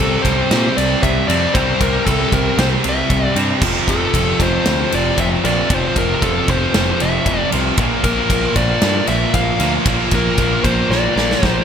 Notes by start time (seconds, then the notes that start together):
Already playing: C3 G3 C4 A4
0.00 C2 C3 G3 C4
0.23 C2 C3 G3 C4 C5, kick, ride
0.51 A#2 C3 G3 C4, snare, ride
0.76 C2 C3 G3 C4 D5, ride
1.01 C2 C3 G3 C4 E5, kick, ride
1.28 F2 C3 G3 C4 D5, ride
1.33 C3
1.53 C2 C3 G3 C4 C5, kick, ride
1.80 C2 C3 G3 C4 A#4, kick, ride
2.05 C2 C3 G3 C4 A4, kick, ride
2.32 C2 C3 G3 C4 A#4, kick, ride
2.58 C2 C3 G3 C4 C5, snare, ride
2.84 C2 C3 G3 C4, ride
2.89 E5
3.10 C2 C3 G3 C4, kick, ride
3.36 G2 C3 G3 C4, ride
3.61 F1 F2 C3 F3, kick, crash
3.88 F1 F2 C3 F3 A4, kick, ride
4.14 F1 F2 C3 F3, kick, ride
4.40 F1 F2 C3 F3 C5, kick, ride
4.65 D2 F2 C3 F3, snare, ride
4.92 F1 F2 C3 F3 D5, ride
5.18 F1 F2 C3 F3 E5, kick, ride
5.44 A#1 F2 C3 F3 D5, ride
5.70 F1 F2 C3 F3, kick, ride
5.74 C5
5.96 F1 F2 C3 F3 A#4, kick, ride
6.22 F1 F2 C3 F3 A4, kick, ride
6.48 F1 F2 C3 F3 C5, kick, ride
6.74 F1 F2 C3 F3 C5, snare, ride
7.00 F1 F2 C3 F3 E5, ride
7.26 F1 F2 C3 F3, kick, ride
7.52 C2 F2 C3 F3, ride
7.56 F3
7.77 A#1 A#2 F3 A#3, kick, ride
8.03 A#1 A#2 F3 A#3 A#4, kick, ride
8.30 A#1 A#2 F3 A#3, kick, ride
8.56 A#1 A#2 F3 A#3 D5, kick, ride
8.81 G2 A#2 F3 A#3, snare, ride
9.07 A#1 A#2 F3 A#3 E5, ride
9.34 A#1 A#2 F3 A#3 F5, kick, ride
9.59 D2 A#2 F3 A#3, ride
9.63 A#3
9.86 A#1 A#2 F3, kick, ride
9.90 A#3
10.11 A#1 A#2 F3 A#3 A#4, kick, ride
10.38 A#1 A#2 F3 A#3, kick, ride
10.64 A#1 A#2 F3 A#3 C5, kick, ride
10.90 A#1 A#2 F3 A#3 D5, snare
11.16 A#1 A#2 F3 A#3, snare
11.31 snare
11.42 A#1 A#2 F3 A#3 C5, kick, snare